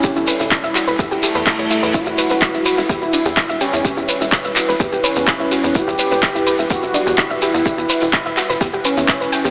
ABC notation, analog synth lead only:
X:1
M:4/4
L:1/8
Q:1/4=126
K:Edor
V:1 name="Analog synth lead"
C2 z3 A,3 | F4 E3 C- | C2 z3 C3 | G4 F3 E- |
E2 z3 C3 |]